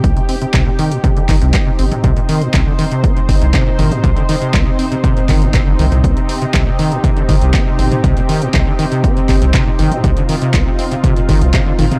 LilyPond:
<<
  \new Staff \with { instrumentName = "Analog synth pad" } { \time 4/4 \key c \minor \tempo 4 = 120 << { g'1 | c''1~ | c''1 | g'1~ |
g'1 | f'1 | } \\ { <c c' ees'>1~ | <c c' ees'>1~ | <c c' ees'>1~ | <c c' ees'>1~ |
<c c' ees'>1~ | <c c' ees'>1 | } >> }
  \new Staff \with { instrumentName = "Acid bass" } { \clef bass \time 4/4 \key c \minor c'16 c16 c'16 c16 c16 bes,16 ees16 bes,16 c16 d16 ees16 c16 c'16 c16 c'16 c16 | c16 bes,16 ees16 bes,16 c16 d16 ees16 c16 c'16 c16 c'16 c16 c16 bes,16 ees16 bes,16 | c16 d16 ees16 c16 c'16 c16 c'16 c16 c16 bes,16 ees16 bes,16 c16 d16 ees16 c16 | c'16 c16 c'16 c16 c16 bes,16 ees16 bes,16 c16 d16 ees16 c16 c'16 c16 c'16 c16 |
c16 bes,16 ees16 bes,16 c16 d16 ees16 c16 c'16 c16 c'16 c16 c16 bes,16 ees16 bes,16 | c16 d16 ees16 c16 c'16 c16 c'16 c16 c16 bes,16 ees16 bes,16 c16 d16 ees16 c16 | }
  \new Staff \with { instrumentName = "Sub bass" } { \clef bass \time 4/4 \key c \minor c,16 r8. c,16 r4 r16 g,,16 c,16 r8 g,,16 r16 | c,16 r8. c,16 r4 r16 g,,16 c,16 r8 g,,16 r16 | c,16 r8. c,16 r4 r16 g,,4 c,16 c,16 | c,16 r8. c,16 r4 r16 g,,16 c,16 r8 g,,16 r16 |
c,16 r8. c,16 r4 r16 g,,16 c,16 r8 g,,16 r16 | c,16 r8. c,16 r4 r16 g,,16 c,16 r8 g,,16 r16 | }
  \new DrumStaff \with { instrumentName = "Drums" } \drummode { \time 4/4 <hh bd>16 hh16 hho16 hh16 <hc hh bd>8 hho16 hh16 <hh bd>16 hh16 <hc hho bd>16 hh16 <hc hh bd>8 hho16 <hh toml>16 | <hh bd>16 hh16 hho16 hh16 <hc hh bd>8 hho16 hh16 <hh bd>16 hh16 <hho bd>16 hh16 <hc hh bd>8 <hho toml>16 <hh toml>16 | <hh bd>16 hh16 hho16 hh16 <hc hh bd>8 hho16 hh16 <hh bd>16 hh16 <hc hho bd>16 hh16 <hc hh bd>8 hho16 <hh toml>16 | <hh bd>16 hh16 hho16 hh16 <hc hh bd>8 hho16 hh16 <hh bd>16 hh16 <hho bd>16 hh16 <hc hh bd>8 <hho toml>16 <hh toml>16 |
<hh bd>16 hh16 hho16 hh16 <hc hh bd>8 hho16 hh16 <hh bd>16 hh16 <hc hho bd>16 hh16 <hc hh bd>8 hho16 <hh toml>16 | <hh bd>16 hh16 hho16 hh16 <hc hh bd>8 hho16 hh16 <hh bd>16 hh16 <hho bd>16 hh16 <hc hh bd>8 <hho toml>16 <hh toml>16 | }
>>